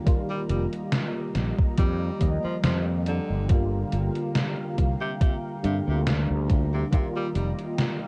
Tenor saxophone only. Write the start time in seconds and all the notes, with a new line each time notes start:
0.30 G3
0.50 G3
1.78 G3
2.44 F3
2.64 F3
3.08 D3
5.01 C3
5.21 C3
5.64 C3
5.88 C3
6.73 C3
6.92 C3
7.16 G3
7.36 G3